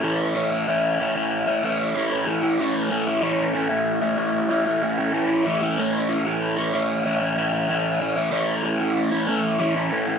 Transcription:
X:1
M:4/4
L:1/16
Q:1/4=94
K:A
V:1 name="Overdriven electric guitar"
[A,,E,A,CE]2 [E,A,CE] [A,CE] [A,,E,A,CE]2 [E,A,CE] [A,CE]2 [A,CE] [E,A,CE]2 [A,,E,A,CE] [A,CE] [E,A,CE] [A,CE] | [A,,E,A,CE]2 [E,A,CE] [A,CE] [A,,E,A,CE]2 [E,A,CE] [A,CE]2 [A,CE] [E,A,CE]2 [A,,E,A,CE] [A,CE] [E,A,CE] [A,CE] | [A,,E,A,CE]2 [E,A,CE] [A,CE] [A,,E,A,CE]2 [E,A,CE] [A,CE]2 [A,CE] [E,A,CE]2 [A,,E,A,CE] [A,CE] [E,A,CE] [A,CE] | [A,,E,A,CE]2 [E,A,CE] [A,CE] [A,,E,A,CE]2 [E,A,CE] [A,CE]2 [A,CE] [E,A,CE]2 [A,,E,A,CE] [A,CE] [E,A,CE] [A,CE] |]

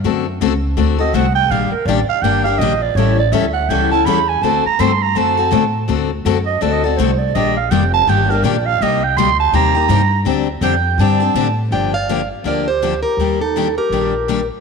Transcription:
X:1
M:4/4
L:1/16
Q:"Swing" 1/4=164
K:Dphr
V:1 name="Clarinet"
z8 z2 e2 ^f2 g2 | f2 B2 d2 f2 g2 f2 e2 d2 | ^c2 d2 =e2 ^f2 g2 a2 =b2 _a2 | a2 b2 c'2 b2 a8 |
z6 e2 (3d2 e2 d2 c2 d2 | e2 f2 g2 a2 g2 B2 d2 f2 | e2 g2 c'2 a2 b8 | z4 g4 a6 z2 |
d2 d4 z2 B2 G4 G2- | G2 E4 G8 z2 |]
V:2 name="Steel-string acoustic guitar"
z16 | z16 | z16 | z16 |
z16 | z16 | z16 | z16 |
g2 f4 z2 d2 c4 B2- | B2 A4 B8 z2 |]
V:3 name="Steel-string acoustic guitar"
[D,A,C^FA]2 z2 [D,A,CFA] z3 [D,A,CFA]2 [CFA]2 [D,A,CFA] z3 | [E,G,B,DG]2 z2 [E,G,B,DG] z3 [E,G,B,DG]2 [B,DG]2 [E,G,B,DG] z3 | [=E,G,^C=EA]2 z2 [E,G,CEA] z3 [E,G,CEA]2 [CEA]2 [E,G,CEA] z3 | [D,A,C^FA]2 z2 [D,A,CFA] z3 [D,A,CFA]2 [CFA]2 [D,A,CFA] z3 |
[D,A,C^FA]2 z2 [D,A,CFA] z3 [D,A,CFA]2 [CFA]2 [D,A,CFA] z3 | [E,G,B,DG]2 z2 [E,G,B,DG] z3 [E,G,B,DG]2 [B,DG]2 [E,G,B,DG] z3 | [C,G,B,EG]2 z2 [C,G,B,EG] z3 [C,G,B,EG]2 [B,EG]2 [C,G,B,EG] z3 | [D,G,CDG]2 z2 [D,G,CDG] z3 [D,G,CDG]2 [CDG]2 [D,G,CDG] z3 |
[D,F,B,DG]2 z2 [D,F,B,DG] z3 [D,F,B,DG]2 z2 [D,F,B,DG] z3 | [E,G,B,DG]2 z2 [E,G,B,DG] z3 [E,G,B,DG]2 z2 [E,G,B,DG] z3 |]
V:4 name="Upright bass" clef=bass
^F,,4 ^C,,4 D,,4 =C,,4 | B,,,2 z2 A,,,2 z2 G,,,4 B,,,4 | A,,,4 D,,4 ^C,,4 =E,,4 | D,,2 z2 G,,4 ^F,,4 A,,4 |
D,,4 ^F,,4 D,,4 C,,4 | B,,,4 F,,,4 G,,,4 B,,,4 | C,,4 D,,4 E,,4 G,,4 | D,,4 F,,4 G,,4 A,,4 |
G,,,8 D,,8 | E,,8 B,,,8 |]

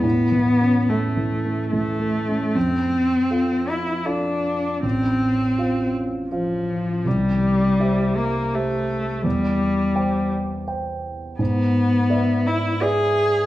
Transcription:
X:1
M:3/4
L:1/8
Q:1/4=82
K:A
V:1 name="Grand piano"
(3A,, E, C (3A, E, A, (3E, A, C | [K:F] F,,2 [FAf]2 [FAf]2 | A,,,2 [Fcf]2 [Fcf]2 | C,,2 [Gce]2 [Gce]2 |
E,,2 [cg]2 [cg]2 | [K:Emix] G,,2 [Bde]2 [Bde]2 |]
V:2 name="Cello"
B,2 A,2 A,2 | [K:F] C3 E D2 | C3 z F,2 | G,3 B, A,2 |
G,3 z3 | [K:Emix] B,3 E G2 |]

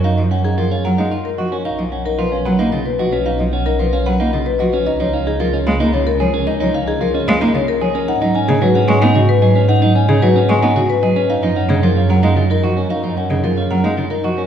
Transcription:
X:1
M:3/4
L:1/16
Q:1/4=112
K:Blyd
V:1 name="Marimba"
e d f G A e f e d A d A | e d f A B e f e d B d B | e d f A B e f e d B d B | d c e G A d e d c A c A |
d c e G A d e d c A c A | f d g G B f g f d B d B | f d g G B f g f d B d B | e d f G A e f e d A d A |
e d f G A e f e d A d A |]
V:2 name="Clean electric guitar"
D z C D E C A D E z F C | D z C D E C B D E z F C | D z C D E C B D E z F C | D D C D E C B D E z G C |
D D C D E C B D E z G C | D D C D F C c D F z G C | D D C D F C c D F z G C | D D C D E C A D E D F C |
D D C D E C A D E D F C |]
V:3 name="Cello" clef=bass
z E, z2 E, z F, G, z2 E, z | z E, z2 E, z F, A, C, z E, z | z E, z2 E, z F, A, C, z E, z | z E, z2 E, z G, A, C, z E, z |
z E, z2 E, z G, A, C, z E, z | z F, z C, F, z G, B, C, z F, z | z F, z C, F, z G, B, C, z F, z | z E, z C, E, z F, G, C, z E, z |
z E, z C, E, z F, G, C, z E, z |]
V:4 name="Double bass section" clef=bass
F,,12 | B,,,12- | B,,,12 | C,,12- |
C,,12 | G,,12- | G,,12 | F,,12- |
F,,12 |]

